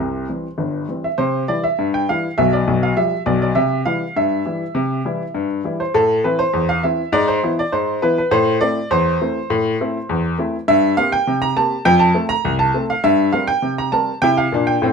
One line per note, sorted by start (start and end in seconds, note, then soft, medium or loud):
0.00 0.24 C2 medium
0.00 0.24 C3 medium
0.00 0.86 C5 medium
0.00 0.85 C6 medium
0.28 0.45 E3 soft
0.28 0.46 G3 soft
0.28 0.46 C4 soft
0.58 0.84 G1 medium
0.58 0.84 G2 medium
0.89 1.05 E3 soft
0.89 1.05 G3 soft
0.89 1.06 C4 soft
1.04 1.19 E5 medium
1.18 1.43 C3 medium
1.18 1.42 C5 medium
1.48 1.65 E3 medium
1.48 1.65 G3 soft
1.48 1.65 E4 medium
1.48 1.63 D5 medium
1.64 1.87 E5 medium
1.79 2.04 G2 medium
1.94 2.08 G5 medium
2.09 2.25 E3 soft
2.09 2.26 G3 medium
2.09 2.26 E4 medium
2.09 2.32 F5 medium
2.38 2.61 B1 medium
2.38 2.62 B2 medium
2.38 2.52 E5 loud
2.53 2.76 D5 medium
2.67 2.91 B1 medium
2.67 2.91 B2 medium
2.83 2.97 F5 medium
2.97 3.13 F3 medium
2.97 3.13 G3 medium
2.97 3.13 G4 medium
2.97 3.21 E5 medium
3.26 3.50 B1 medium
3.26 3.50 B2 medium
3.26 3.40 D5 medium
3.42 3.56 D5 medium
3.55 3.81 C3 loud
3.55 3.79 E5 medium
3.86 4.02 E3 medium
3.86 4.02 G3 medium
3.86 4.03 E4 medium
3.86 4.14 F5 loud
4.16 4.41 G2 medium
4.16 5.47 E5 medium
4.45 4.62 E3 medium
4.45 4.62 G3 medium
4.45 4.62 E4 medium
4.75 5.00 C3 loud
5.05 5.21 E3 medium
5.05 5.21 G3 medium
5.05 5.22 E4 medium
5.35 5.60 G2 medium
5.64 5.81 E3 soft
5.64 5.81 G3 medium
5.64 5.81 E4 medium
5.80 5.94 C5 medium
5.94 6.19 A2 loud
5.94 6.22 A4 loud
6.24 6.41 E3 medium
6.24 6.41 C4 medium
6.24 6.41 E4 medium
6.24 6.39 B4 medium
6.39 6.67 C5 loud
6.53 6.78 E2 medium
6.69 6.83 F5 loud
6.83 6.99 E3 medium
6.83 7.00 C4 medium
6.83 7.00 E4 medium
6.83 7.11 E5 medium
7.12 7.37 G#2 loud
7.12 7.27 D5 loud
7.28 7.51 C5 medium
7.43 7.59 E3 medium
7.43 7.59 B3 medium
7.43 7.60 E4 medium
7.59 7.73 D5 loud
7.72 7.97 G#2 medium
7.72 8.00 C5 medium
8.02 8.18 E3 medium
8.02 8.19 B3 medium
8.02 8.19 E4 medium
8.02 8.16 B4 loud
8.18 8.32 B4 medium
8.31 8.56 A2 loud
8.31 8.59 C5 loud
8.61 8.77 A3 medium
8.61 8.78 C4 medium
8.61 8.78 E4 medium
8.61 8.89 D5 loud
8.91 9.15 E2 loud
8.91 10.20 C5 loud
9.22 9.37 A3 medium
9.22 9.37 C4 medium
9.22 9.37 E4 medium
9.50 9.75 A2 loud
9.81 9.96 A3 medium
9.81 9.97 C4 medium
9.81 9.97 E4 medium
10.09 10.34 E2 medium
10.38 10.54 A3 medium
10.38 10.55 C4 medium
10.38 10.55 E4 medium
10.68 10.93 G2 loud
10.68 10.96 E5 loud
10.97 11.13 A#3 medium
10.97 11.14 C4 medium
10.97 11.14 G4 medium
10.97 11.12 F5 loud
11.12 11.36 G5 loud
11.27 11.52 C3 medium
11.42 11.56 A#5 loud
11.57 11.73 A#3 medium
11.57 11.73 C4 medium
11.57 11.73 G4 medium
11.57 11.84 A5 loud
11.85 12.10 F2 loud
11.85 12.00 G5 loud
11.99 12.23 A5 loud
12.14 12.31 A3 medium
12.14 12.31 C4 medium
12.14 12.31 A4 medium
12.29 12.53 A#5 loud
12.45 12.70 C2 medium
12.59 12.83 A5 loud
12.74 12.90 A3 medium
12.74 12.91 C4 medium
12.74 12.91 A4 medium
12.90 13.04 F5 loud
13.04 13.29 G2 loud
13.04 13.32 E5 loud
13.33 13.49 G3 medium
13.33 13.50 C4 medium
13.33 13.50 A#4 medium
13.33 13.48 F5 loud
13.47 13.71 G5 loud
13.62 13.88 C3 medium
13.78 13.93 A#5 loud
13.92 14.09 G3 medium
13.92 14.09 C4 medium
13.92 14.09 A#4 medium
13.92 14.16 A5 loud
14.22 14.46 C3 medium
14.22 14.47 E4 medium
14.22 14.37 G5 loud
14.37 14.65 F5 loud
14.52 14.76 A#2 medium
14.52 14.77 D4 medium
14.67 14.93 G5 loud
14.82 14.93 A2 medium
14.82 14.93 C4 medium